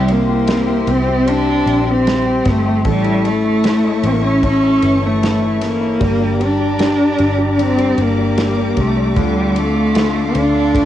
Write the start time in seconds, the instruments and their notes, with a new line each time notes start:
Already playing: fingered electric bass C2, steel-string acoustic guitar C3 E3 G3 C4 E4 C5, cello G3, grand piano C4 G4, french horn section E4, string section G4 C5 E5 C6
0.08 cello A#3, grand piano C4, ride
0.29 grand piano G4
0.48 grand piano C4, snare, ride
0.67 grand piano G4
0.87 fingered electric bass C2, grand piano C4, cello C4, ride
1.08 grand piano G4
1.25 steel-string acoustic guitar G3 C4 E4 C5, grand piano C4, cello D4, french horn section G4, ride
1.47 grand piano G4
1.66 fingered electric bass A#1, grand piano C4, ride
1.87 cello C4, grand piano G4
2.05 steel-string acoustic guitar G3 C4 E4 C5, grand piano C4, snare, ride
2.26 grand piano G4
2.45 fingered electric bass G1, grand piano C4, kick, snare, ride
2.50 cello A3
2.65 grand piano G4
2.85 fingered electric bass A1, steel-string acoustic guitar A2 E3 A3 C#4 E4 A4, french horn section E4, grand piano A4, string section A4 C#5 E5 C#6, kick, ride
2.89 cello G3
3.04 grand piano E4, ride
3.24 grand piano A3, cello A3, ride
3.44 grand piano E4
3.64 grand piano A3, steel-string acoustic guitar A3 C#4 E4, snare, ride
3.68 steel-string acoustic guitar A4
3.84 grand piano E4
4.03 fingered electric bass A1, grand piano A3, cello C#4, ride
4.12 cello A#3
4.21 cello C#4, grand piano E4
4.43 steel-string acoustic guitar A3 C#4 E4 A4, grand piano C#4, cello C#4, kick, ride
4.64 grand piano E4
4.82 fingered electric bass G1, grand piano E3, ride
5.03 cello A3, grand piano E4
5.22 steel-string acoustic guitar C#4 E4 A4, snare, ride
5.42 grand piano E4
5.61 cello A#3, snare, ride
5.81 grand piano E4
6.00 fingered electric bass G1, grand piano G3, steel-string acoustic guitar G3 D4 G4 A#4, french horn section D4, string section G4 D5 A#5 D6, kick, ride
6.20 grand piano G3
6.39 grand piano G3, ride
6.45 cello D4
6.59 grand piano G3
6.78 steel-string acoustic guitar G3 D4 G4 A#4, grand piano G3, snare, ride
7.00 grand piano G3
7.18 fingered electric bass G1, grand piano G3, ride
7.38 grand piano G3
7.58 steel-string acoustic guitar G3 D4 G4 A#4, grand piano D4, ride
7.63 cello C4
7.78 grand piano G3, ride
7.98 fingered electric bass G1, grand piano G3, ride
8.02 cello A#3
8.18 grand piano G3
8.37 steel-string acoustic guitar G3 D4 G4, grand piano G3, snare, ride
8.57 grand piano G3
8.77 fingered electric bass C2, grand piano G3, cello A3, kick, ride
8.97 grand piano G3
9.11 cello A3
9.16 fingered electric bass D2, grand piano D3, steel-string acoustic guitar D3 A3 C4 F4 A4, french horn section D4, string section A4 F5 C6, kick, ride
9.21 cello G3
9.36 grand piano D3
9.56 grand piano D3, cello A3, ride
9.75 grand piano D3
9.95 grand piano D3, steel-string acoustic guitar A3 C4 F4, snare, ride
9.99 steel-string acoustic guitar A4
10.15 grand piano D3
10.35 fingered electric bass D2, grand piano D3, cello D4, ride
10.54 grand piano D3
10.74 grand piano A3, steel-string acoustic guitar A3 C4 F4 A4, kick, ride